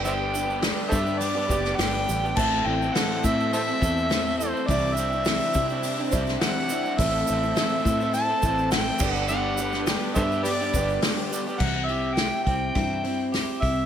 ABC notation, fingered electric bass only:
X:1
M:4/4
L:1/8
Q:1/4=104
K:C
V:1 name="Fingered electric bass" clef=bass
G,,,3 G,,2 ^F,,, G,,, A,,, | A,,, A,,, z A,,2 E,,3 | C,,3 C,2 C,, z2 | A,,, A,,, z A,,2 A,,,2 G,,,- |
G,,,3 G,,2 G,,, z2 | C,,3 C,, G,,3 C,, |]